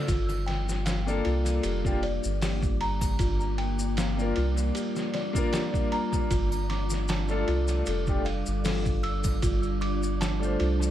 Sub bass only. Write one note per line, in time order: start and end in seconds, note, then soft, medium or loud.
0.09 1.22 G1 medium
1.26 1.60 C2 medium
1.64 2.20 F1 medium
2.25 3.17 G1 medium
3.20 4.33 G1 loud
4.37 4.71 C2 medium
6.31 7.45 G1 loud
7.48 7.83 C2 medium
7.88 8.43 F1 loud
8.48 9.40 G1 medium
9.43 10.57 G1 medium
10.60 10.91 C2 medium